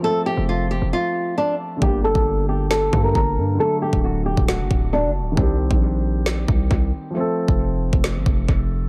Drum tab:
SD |----------------|--------o-------|--------o-------|--------o-------|
BD |----------------|o--o------o-o---|---o---o--o-----|o--o------o-o---|

SD |--------o-------|
BD |---o---o--o-o---|